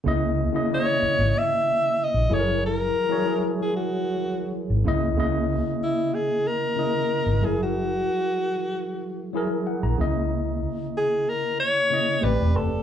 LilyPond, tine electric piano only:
\new Staff \with { instrumentName = "Tine electric piano" } { \time 4/4 \key cis \dorian \tempo 4 = 94 << { r1 | r1 | r1 | r2. fis''16 ais''8. |
r1 | } \\ { <cis ais e' dis''>8 r16 <cis ais e' dis''>16 <cis ais e' d'' dis''>4~ <cis ais e' d'' dis''>16 r4 r16 <fis e' gis' a' ais'>8~ | <fis e' gis' a' ais'>8 r16 <fis e' gis' cis''>16 <fis e' gis' ais'>4~ <fis e' gis' ais'>16 r4 r16 <cis ais e' dis''>8 | <cis ais e' dis''>4~ <cis ais e' dis''>16 r4 r16 <cis ais e' dis''>4 <fis e' gis' ais'>8~ | <fis e' gis' ais'>4 r4. <fis e' gis' ais'>4 <cis ais e' dis''>8~ |
<cis ais e' dis''>4 r4. <cis ais e' dis''>8 <a c' g' b' d''>8. r16 | } >> }